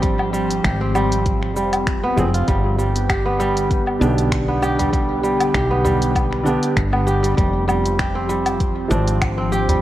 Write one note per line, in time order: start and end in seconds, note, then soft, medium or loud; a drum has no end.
0.00 0.60 G#1 loud
0.00 1.52 F3 medium
0.00 2.44 F3 medium
0.00 0.32 G3 medium
0.00 0.80 C4 medium
0.00 1.53 C4 medium
0.00 2.44 C4 medium
0.00 0.79 D4 medium
0.00 0.64 G4 loud
0.00 kick loud
0.00 closed hi-hat soft
0.00 shaker soft
0.19 low woodblock medium
0.33 0.94 G3 medium
0.33 shaker medium
0.51 closed hi-hat medium
0.51 shaker soft
0.64 1.57 G#1 loud
0.64 2.05 G4 medium
0.64 finger snap loud
0.64 kick loud
0.64 closed hi-hat soft
0.64 shaker soft
0.81 2.10 C4 medium
0.95 1.55 G3 loud
0.95 low woodblock medium
0.95 shaker medium
1.12 closed hi-hat medium
1.12 shaker soft
1.26 kick loud
1.26 closed hi-hat soft
1.26 shaker soft
1.43 finger snap soft
1.56 2.13 F1 medium
1.56 2.47 G3 medium
1.56 shaker medium
1.73 closed hi-hat soft
1.73 low woodblock medium
1.73 shaker soft
1.87 finger snap medium
1.87 kick loud
1.87 closed hi-hat soft
1.87 shaker soft
2.04 2.24 B3 medium
2.16 2.42 F1 medium
2.16 2.26 F3 medium
2.16 3.32 C4 medium
2.16 2.27 C4 medium
2.16 2.27 G#4 medium
2.16 shaker medium
2.34 3.86 F4 medium
2.34 closed hi-hat medium
2.34 shaker soft
2.48 3.97 G1 medium
2.48 7.34 D3 medium
2.48 2.77 G3 medium
2.48 7.34 B3 medium
2.48 7.34 G4 medium
2.48 kick loud
2.48 closed hi-hat soft
2.48 shaker soft
2.79 3.38 G3 medium
2.79 shaker medium
2.96 closed hi-hat medium
2.96 shaker soft
3.09 4.51 G4 medium
3.09 finger snap loud
3.09 kick loud
3.09 closed hi-hat soft
3.09 low woodblock medium
3.09 shaker soft
3.26 4.48 B3 medium
3.40 4.77 G3 loud
3.40 shaker medium
3.57 closed hi-hat medium
3.57 shaker soft
3.71 kick loud
3.71 closed hi-hat soft
3.71 shaker soft
3.87 low woodblock medium
3.99 5.50 B1 loud
3.99 6.42 D3 medium
3.99 6.43 B3 medium
3.99 5.69 D4 medium
3.99 6.44 G4 medium
3.99 shaker medium
4.18 closed hi-hat soft
4.18 shaker soft
4.32 finger snap loud
4.32 kick loud
4.32 closed hi-hat soft
4.32 shaker soft
4.48 5.70 B3 medium
4.62 5.54 G4 loud
4.62 low woodblock medium
4.62 shaker medium
4.79 4.91 G3 medium
4.79 closed hi-hat medium
4.79 udu medium
4.79 shaker soft
4.92 5.22 G3 medium
4.92 kick loud
4.92 closed hi-hat soft
4.92 shaker soft
5.23 5.83 G3 medium
5.23 shaker medium
5.40 closed hi-hat medium
5.40 low woodblock medium
5.40 shaker soft
5.54 6.57 B1 loud
5.54 6.96 G4 medium
5.54 finger snap loud
5.54 kick loud
5.54 closed hi-hat soft
5.54 shaker soft
5.71 6.92 B3 medium
5.85 7.22 G3 loud
5.85 udu medium
5.85 shaker medium
6.02 closed hi-hat medium
6.02 shaker soft
6.15 kick loud
6.15 closed hi-hat soft
6.15 low woodblock medium
6.15 shaker soft
6.33 finger snap soft
6.43 7.35 D3 medium
6.43 7.36 B3 medium
6.43 8.13 D4 medium
6.43 shaker medium
6.48 7.37 G4 medium
6.63 closed hi-hat medium
6.63 shaker soft
6.77 7.33 G1 loud
6.77 finger snap medium
6.77 kick loud
6.77 closed hi-hat soft
6.77 shaker soft
6.93 8.21 B3 medium
6.93 low woodblock medium
7.07 7.98 G4 loud
7.07 shaker medium
7.23 7.36 G3 medium
7.23 closed hi-hat medium
7.23 shaker soft
7.37 8.86 F1 medium
7.37 9.81 F3 medium
7.37 7.66 G3 medium
7.37 9.81 C4 medium
7.37 kick loud
7.37 closed hi-hat soft
7.37 shaker soft
7.68 8.28 G3 medium
7.68 low woodblock medium
7.68 shaker medium
7.85 closed hi-hat medium
7.85 shaker soft
7.99 9.40 G4 medium
7.99 finger snap loud
7.99 kick loud
7.99 closed hi-hat soft
7.99 shaker soft
8.15 9.37 C4 medium
8.29 9.67 G3 loud
8.29 shaker medium
8.46 closed hi-hat medium
8.46 low woodblock medium
8.46 shaker soft
8.60 kick medium
8.60 closed hi-hat soft
8.60 shaker soft
8.88 9.81 G#1 loud
8.88 9.81 F3 medium
8.88 9.81 C4 medium
8.88 9.81 D4 medium
8.88 shaker medium
9.08 closed hi-hat medium
9.08 shaker soft
9.22 finger snap loud
9.22 kick loud
9.22 closed hi-hat soft
9.22 low woodblock medium
9.22 shaker soft
9.38 9.81 C4 medium
9.52 9.81 G4 loud
9.52 shaker medium
9.68 9.81 G3 medium
9.68 closed hi-hat medium
9.68 udu medium
9.68 shaker soft